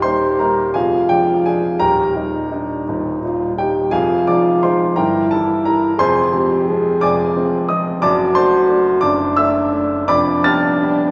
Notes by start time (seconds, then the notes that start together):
Already playing: D#1 D#2 G4 D#5 G5
0.02 G3 A#3 D#4 C5 C6
0.39 G3 A#3 D#4 A#4 A#5
0.74 F1 F2 F4 G#4 F5 G#5
1.09 F3 G#3 D4 G4 G5
1.46 F3 G#3 D4 G#4 G#5
1.79 D#1 D#2 G4 A#4 G5 A#5
2.16 G3 D#4
2.50 G3 D4 D#4
2.87 D#1 D#2 D#4
3.22 G3 D#4 F4
3.57 G3 D#4 G4 G5
3.91 F1 F2 F4 G#4 F5 G#5
4.27 F3 G#3 D#4 D5 D6
4.63 F3 G#3 D#4 C5 C6
4.96 G1 G2 E4 A#4 G5 A#5
5.31 E3 G3 E4 A4 A5
5.65 E3 G3 E4 A#4 A#5
5.98 F1 F2 G#4 C5 G#5 C6
6.33 F3 G#3 C4 G4
6.67 F3 G#3 C4 G#4
7.01 F1 F2 D5 G#5 D6
7.36 F3 G#3 C4
7.69 F3 G#3 C4 D#5 D#6
8.01 F#1 F#2 F#4 D5 A5 D6
8.35 A3 D4 C5 A5 C6
8.69 A3 D4
9.01 F#1 F#2 D4 D5 A5 D6
9.37 A3 D4 E5 E6
9.73 A3 D4
10.08 F1 F2 D4 D5 B5 D6
10.44 G3 B3 G4 A5 F6 A6
10.82 G3 B3 G4